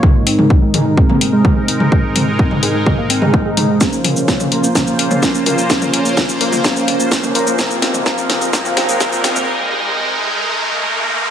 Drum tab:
HH |--o---o---o---o-|--o---o---o---o-|--o---o---o---o-|--o---o---o---o-|
SH |----------------|----------------|xx-xxx-xxx-xxxxx|xx-xxx-xxx-xxxxx|
SD |----------------|----------------|o---o---o---o---|o---o---o---o---|
T2 |o--o--o--o--o--o|--o--o--o--o--o-|--o--o--o--o--o-|-o--o--o--o--o--|
BD |o---o---o---o---|o---o---o---o---|o---o---o---o---|o---o---o---o---|

HH |--o---o---o---o-|----------------|
SH |xx-xxx-xxx-xxxxx|----------------|
SD |o-o-o-o-o-o-o-o-|----------------|
T2 |o--o--o--o--o--o|----------------|
BD |o---o---o---o---|----------------|